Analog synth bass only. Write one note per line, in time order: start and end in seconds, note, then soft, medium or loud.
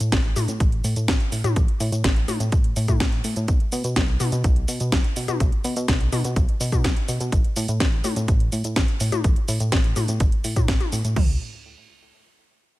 0.00 0.11 A2 loud
0.12 0.34 A1 loud
0.36 0.47 A2 medium
0.48 0.59 A2 loud
0.60 0.82 A1 loud
0.84 0.95 A2 medium
0.96 1.07 A2 medium
1.08 1.19 A1 medium
1.32 1.43 A2 medium
1.44 1.55 A2 loud
1.56 1.67 A1 loud
1.80 1.91 A2 loud
1.92 2.03 A2 medium
2.04 2.26 A1 loud
2.28 2.39 A2 medium
2.40 2.51 A2 medium
2.52 2.74 A1 medium
2.76 2.87 A2 medium
2.88 2.99 A2 medium
3.00 3.22 A1 medium
3.24 3.35 A2 medium
3.36 3.47 A2 medium
3.48 3.59 B1 loud
3.72 3.83 B2 loud
3.84 3.95 B2 medium
3.96 4.18 B1 loud
4.20 4.31 B2 medium
4.32 4.43 B2 loud
4.44 4.66 B1 loud
4.68 4.79 B2 medium
4.80 4.91 B2 medium
4.92 5.03 B1 medium
5.16 5.27 B2 medium
5.28 5.39 B2 loud
5.40 5.51 B1 loud
5.64 5.75 B2 loud
5.76 5.87 B2 loud
5.88 6.10 B1 loud
6.12 6.23 B2 medium
6.25 6.35 B2 loud
6.36 6.47 B1 medium
6.60 6.71 B2 medium
6.72 6.83 B2 medium
6.84 6.95 B1 medium
7.08 7.19 B2 medium
7.20 7.31 B2 medium
7.32 7.43 A1 loud
7.56 7.67 A2 loud
7.68 7.79 A2 loud
7.80 8.02 A1 loud
8.04 8.15 A2 medium
8.16 8.27 A2 medium
8.28 8.50 A1 loud
8.52 8.63 A2 medium
8.64 8.75 A2 medium
8.76 8.87 A1 medium
9.00 9.11 A2 medium
9.12 9.23 A2 medium
9.24 9.35 A1 loud
9.48 9.59 A2 loud
9.60 9.71 A2 loud
9.72 9.94 A1 loud
9.96 10.07 A2 medium
10.08 10.19 A2 loud
10.20 10.31 A1 medium
10.44 10.55 A2 medium
10.56 10.67 A2 medium
10.68 10.79 A1 medium
10.92 11.03 A2 loud
11.04 11.15 A2 medium
11.16 11.39 C#2 loud